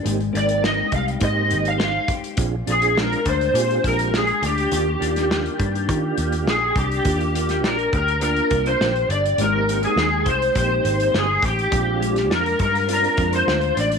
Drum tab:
HH |xxxx--xxx-xx--xx|x-xx-xxxxxxx-xxx|x-xx-xxxx-xx--xx|xxxx-xxxxxxx-xxx|
SD |----o-------o---|----o-------o---|---oo-------o---|---oo-------o---|
BD |------o-o-----o-|o-----o---o-----|------o-o-----o-|o-----o---o-----|

HH |x-xx--xxx-xx--xx|x-xx-xxxxxxx-xxx|
SD |----o-------o---|---oo-------o---|
BD |------o-o-----o-|o-----o---o-----|